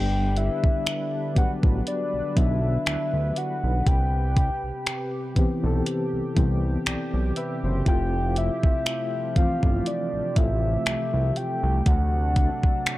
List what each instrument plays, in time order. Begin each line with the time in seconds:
Already playing: analog synth bass G1, analog synth pad D3 D4 B4, synth keys G3 B3 D4 G4, soft synth lead G5
0.37 soft synth lead E5, closed hi-hat
0.64 analog synth bass A1, kick
0.87 finger snap, closed hi-hat
1.35 analog synth bass A1, synth keys F#3 B3 D4 G4, soft synth lead F#5, kick, closed hi-hat
1.62 analog synth bass A1, synth keys F#3 B3 D4 F#4, kick
1.87 soft synth lead D5, closed hi-hat
2.14 analog synth bass B1
2.35 analog synth bass B1, synth keys F#3 B3 D4 E4, soft synth lead E5, kick, closed hi-hat
2.86 analog synth bass D2, finger snap, closed hi-hat
3.14 analog synth bass D2
3.36 soft synth lead F#5, closed hi-hat
3.64 analog synth bass B1
3.86 analog synth bass C2, analog synth pad C3 G4, soft synth lead G5, kick, closed hi-hat
4.37 kick, closed hi-hat
4.64 analog synth bass B1
4.87 finger snap, closed hi-hat
5.35 analog synth bass B1, synth keys E3 B3 C4 G4, kick, closed hi-hat
5.62 analog synth bass B1, synth keys E3 B3 C4 A4
5.86 closed hi-hat
6.13 analog synth bass C2
6.35 analog synth bass C2, synth keys E3 B3 C4 G4, kick, closed hi-hat
6.86 analog synth bass B1, synth keys D5 G5, finger snap, closed hi-hat
7.14 analog synth bass B1
7.36 synth keys B4 E5, closed hi-hat
7.63 analog synth bass F#1, synth keys G4 C5
7.85 analog synth bass F1, analog synth pad F3 A3, synth keys A3 C4 E4 F4, soft synth lead G5, kick, closed hi-hat
8.36 soft synth lead E5, closed hi-hat
8.63 analog synth bass G1, kick
8.86 finger snap, closed hi-hat
9.35 analog synth bass G1, synth keys E3 A3 C4 F4, soft synth lead F5, kick, closed hi-hat
9.62 analog synth bass G1, synth keys A3 C4 E4, kick
9.72 synth keys F4
9.86 soft synth lead D5, closed hi-hat
10.13 analog synth bass A1
10.35 analog synth bass A1, synth keys A3 C4 E4 F4, soft synth lead E5, kick, closed hi-hat
10.86 analog synth bass C2, finger snap, closed hi-hat
11.14 analog synth bass C2
11.36 soft synth lead G5, closed hi-hat
11.63 analog synth bass C2
11.86 analog synth bass D2, analog synth pad F#3 D4, soft synth lead F#5, kick, closed hi-hat
12.36 kick, closed hi-hat
12.63 analog synth bass C2, kick
12.86 finger snap, closed hi-hat